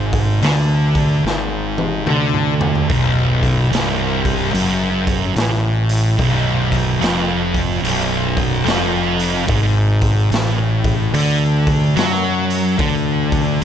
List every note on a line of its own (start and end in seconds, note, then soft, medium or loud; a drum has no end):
0.00 0.39 G#1 medium
0.00 0.41 G#2 loud
0.13 kick medium
0.13 open hi-hat medium
0.41 1.20 D2 medium
0.41 1.24 D3 loud
0.41 snare loud
0.41 open hi-hat medium
0.95 kick medium
0.95 open hi-hat medium
1.24 2.03 G#1 medium
1.24 2.06 G#2 loud
1.24 snare medium
1.78 high tom medium
2.06 2.85 D2 medium
2.06 2.89 D3 loud
2.06 mid tom medium
2.34 mid tom medium
2.61 floor tom loud
2.75 floor tom medium
2.89 3.68 B0 medium
2.89 3.71 B1 loud
2.89 kick loud
2.89 open hi-hat medium
3.43 kick medium
3.43 open hi-hat medium
3.71 4.50 C1 medium
3.71 4.53 C2 loud
3.71 snare loud
3.71 open hi-hat medium
4.25 kick medium
4.25 open hi-hat medium
4.54 5.33 F#1 loud
4.54 5.35 F#2 loud
4.54 open hi-hat medium
5.07 kick medium
5.07 open hi-hat medium
5.36 6.14 A1 medium
5.36 6.18 A2 loud
5.36 snare loud
5.36 open hi-hat medium
5.89 open hi-hat medium
6.18 6.98 B0 medium
6.18 7.01 B1 loud
6.18 kick loud
6.18 open hi-hat medium
6.72 kick medium
6.72 open hi-hat medium
7.01 7.80 F1 medium
7.01 7.82 F2 loud
7.01 snare loud
7.01 open hi-hat medium
7.55 kick medium
7.55 open hi-hat medium
7.83 8.62 B0 loud
7.83 8.65 B1 loud
7.83 open hi-hat medium
8.37 kick medium
8.37 open hi-hat medium
8.65 9.44 F1 medium
8.65 9.47 F2 loud
8.65 snare loud
8.65 open hi-hat medium
9.19 open hi-hat medium
9.48 10.27 G#1 medium
9.48 10.30 G#2 loud
9.48 kick loud
9.48 open hi-hat medium
10.02 kick medium
10.02 open hi-hat medium
10.31 11.10 A1 medium
10.31 11.13 A2 loud
10.31 snare loud
10.31 open hi-hat medium
10.84 kick medium
10.84 open hi-hat medium
11.13 11.92 D2 loud
11.13 11.95 D3 loud
11.13 open hi-hat medium
11.67 kick medium
11.67 open hi-hat medium
11.95 12.75 F#2 medium
11.95 12.77 F#3 loud
11.95 snare loud
11.95 open hi-hat medium
12.50 open hi-hat medium
12.78 13.57 D2 medium
12.78 13.60 D3 loud
12.78 kick loud
12.78 open hi-hat medium
13.32 kick medium
13.32 open hi-hat medium